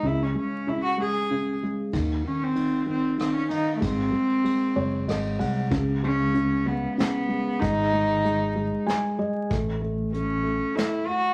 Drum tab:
RD |------|x-x-xx|x-x-xx|------|
HH |------|------|------|x-x-x-|
SD |------|----r-|----r-|----o-|
BD |------|o-----|o-----|o-----|

RD |------|------|
HH |x-x-x-|x-x-x-|
SD |----o-|----o-|
BD |o-----|o-----|